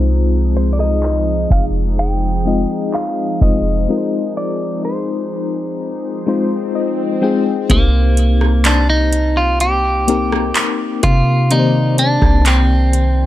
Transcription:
Already playing: C2 F3 G#3 C4 D#4 F4 G#4 C5
0.08 closed hi-hat
0.57 C5
0.73 D5
0.79 D#5, cross-stick
1.03 clap, closed hi-hat
1.50 F1 F5, kick, closed hi-hat
1.98 G5, closed hi-hat
2.45 G#3 C4 D#4 F4 D#5, closed hi-hat
2.94 F5, clap
3.41 F1 G#3 C4 D#4 F4 C5 D#5, kick
3.88 G#3 C4 D#4 F4 A#4, swell
3.97 C5
4.37 D5
4.85 C5
6.26 G#3 C4 D#4 F4 C5
6.75 D#5
7.22 G#3 C4 D#4 F4 G#4 G5
7.69 C2 A#3 C4 D#4 G4 C5, kick, closed hi-hat
8.17 closed hi-hat
8.41 cross-stick
8.65 D4, clap, closed hi-hat
8.90 D#4
9.13 closed hi-hat
9.37 F4
9.60 G4, closed hi-hat
10.07 A#3 C4 D#4 G4 A#4, closed hi-hat
10.32 cross-stick
10.55 clap, closed hi-hat
11.03 C3 F4, kick, closed hi-hat
11.50 D#3 A#3 C4 D#4 G4 D5, closed hi-hat
11.59 C5
11.98 D4, closed hi-hat
12.22 C2, kick, cross-stick
12.46 C4, clap, closed hi-hat
12.93 closed hi-hat

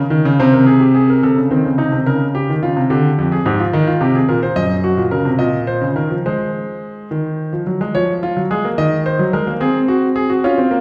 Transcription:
Already playing: A#4
0.10 D#3
0.25 C#3
0.40 C3 C5
0.53 A#4
0.67 G#4
0.80 G4
0.95 G#4
1.10 A#4
1.23 C3 A4
1.37 C#3
1.51 D#3 C4
1.64 C#3
1.78 C3 D#4
1.92 C3
2.06 C#3 A#4
2.35 G4
2.49 D#3
2.62 C#3 F4
2.76 C3
2.90 D3 G4
3.18 F2
3.32 G#4
3.46 G#2 G4
3.60 F4
3.73 D#3 D#4
3.87 F4
4.01 C3 G4
4.15 G#4
4.29 A#2 A#4
4.43 C5
4.56 F#2 D#5
4.84 F#4
4.97 A#2
5.11 C#3 A#4
5.25 C3
5.39 A#2 D#5
5.67 C5
5.82 C#3
5.96 D#3 A#4
6.11 F3
6.26 G#3 C5
7.11 D#3
7.53 F3
7.67 F#3
7.81 G#3
7.95 F3 C#5
8.23 F4
8.37 F#3
8.51 G#3 G#4
8.65 A#3
8.78 D#3 D#5
9.06 C5
9.19 F#3
9.33 G#3 A#4
9.47 A#3
9.60 C4 G#4
9.88 F#4
10.16 G#4
10.30 F#4
10.44 C#4 F4
10.58 C4
10.71 A#3

